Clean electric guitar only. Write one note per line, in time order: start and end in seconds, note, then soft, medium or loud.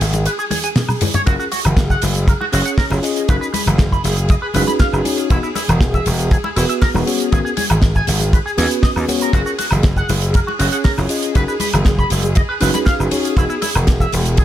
0.26 0.30 B4 medium
0.39 0.43 G#4 loud
0.51 0.58 G#4 loud
0.64 0.68 G#5 loud
1.14 1.21 C#5 loud
1.26 1.33 F#4 loud
1.39 1.43 F#4 loud
1.52 1.58 F#4 loud
1.90 1.99 F#5 medium
2.28 2.32 A#4 medium
2.41 2.44 F#4 loud
2.53 2.60 F#4 loud
2.66 2.69 F#5 loud
2.78 2.84 A#4 loud
3.28 3.35 B4 loud
3.41 3.45 B4 loud
3.54 3.60 B4 loud
3.92 4.01 B5 medium
4.29 4.33 D#5 medium
4.42 4.46 B4 loud
4.55 4.61 B4 loud
4.67 4.71 B5 loud
4.80 4.86 F5 loud
5.30 5.37 E4 loud
5.43 5.47 E4 loud
5.55 5.62 E4 loud
5.93 6.03 E5 medium
6.31 6.35 G#4 medium
6.44 6.48 E4 loud
6.56 6.63 E4 loud
6.69 6.73 E5 loud
6.82 6.88 A#4 loud
7.32 7.38 G#4 loud
7.45 7.49 G#4 loud
7.57 7.64 G#4 medium
7.95 8.05 G#5 medium
8.33 8.37 B4 medium
8.46 8.49 G#4 loud
8.58 8.68 G#4 loud
8.83 8.90 D#5 medium
9.21 9.31 A#4 loud
9.33 9.40 F#4 loud
9.46 9.50 F#4 loud
9.59 9.65 F#4 loud
9.97 10.06 F#5 medium
10.34 10.38 A#4 medium
10.47 10.51 F#4 loud
10.59 10.66 F#4 loud
10.72 10.76 F#5 loud
10.84 10.91 A#4 loud
11.35 11.42 B4 loud
11.48 11.52 B4 loud
11.60 11.67 B4 loud
11.98 12.08 B5 medium
12.36 12.40 D#5 medium
12.49 12.53 B4 loud
12.61 12.68 B4 loud
12.74 12.78 B5 loud
12.86 12.93 F5 loud
13.37 13.44 E4 loud
13.50 13.54 E4 loud
13.62 13.69 E4 loud
14.00 14.10 E5 medium
14.38 14.42 G#4 medium